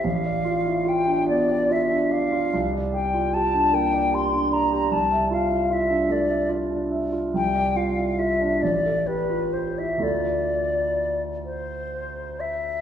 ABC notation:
X:1
M:6/8
L:1/16
Q:3/8=48
K:Ddor
V:1 name="Flute"
f4 g2 d2 e2 f2- | f2 g2 a2 g2 c'2 _b2 | a2 f2 e2 d2 z4 | g2 f2 e2 d2 B2 c e |
d6 c4 e2 |]
V:2 name="Grand piano"
A,,, d F E F D B, d F D d F | C,, d G F G D _B, d G D d G | C,, e F E F D A, e F D e F | C,, d F E F D A,,, A G F G E |
[D,,A,EFA]12 |]